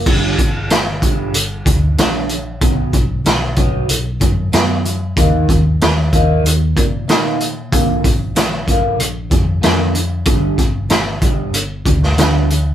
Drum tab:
CC |x---------------|----------------|----------------|----------------|
HH |--x-x-x-x-x-x-x-|x-x-x-x-x-x-x-x-|x-x-x-x-x-x-x-x-|x-x-x-x-x-x-x-x-|
SD |----o-------o---|----o-------o---|----o-------o---|----o-------o---|
BD |o-o---o---o-----|o-o---o---o-----|o-o---o---o-----|o-o---o---o-----|

CC |----------------|
HH |x-x-x-x-x-x-x-x-|
SD |----o------oo---|
BD |o-o---o---o-----|